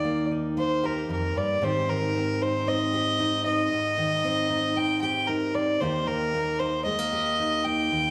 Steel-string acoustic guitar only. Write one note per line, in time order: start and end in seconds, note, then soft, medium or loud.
0.00 1.08 D#2 medium
0.00 1.61 D#3 soft
0.00 0.31 D#4 soft
0.00 0.83 G4 soft
0.04 0.56 A#3 soft
0.31 1.63 D#4 soft
0.57 1.59 A#3 soft
0.84 1.64 G4 medium
1.09 1.35 F2 soft
1.35 1.61 G2 soft
1.61 3.68 G#2 medium
1.61 1.87 D#3 soft
1.61 2.15 C4 soft
1.61 2.41 D#4 soft
1.61 2.93 G4 soft
1.88 3.96 D#3 soft
2.15 2.67 C4 soft
2.41 3.19 D#4 soft
2.67 3.45 C4 soft
2.94 3.75 G4 soft
3.20 4.49 D#4 soft
3.46 3.68 C4 soft
3.72 5.78 G#2 medium
3.98 5.80 D#3 soft
4.24 4.76 C4 soft
4.50 5.28 D#4 soft
4.77 5.54 C4 soft
5.03 5.83 G4 soft
5.29 5.82 D#4 soft
5.55 5.78 C4 soft
5.81 7.90 D#2 medium
5.81 6.07 D#3 soft
5.81 6.34 A#3 soft
5.81 6.60 D#4 soft
5.81 7.12 G4 soft
6.07 8.11 D#3 soft
6.34 6.85 A#3 soft
6.60 7.39 D#4 soft
6.86 6.99 G#3 soft
6.99 7.65 A#3 soft
7.13 7.88 G4 soft
7.40 8.11 D#4 soft
7.66 7.88 A#3 soft
7.92 8.11 D#2 medium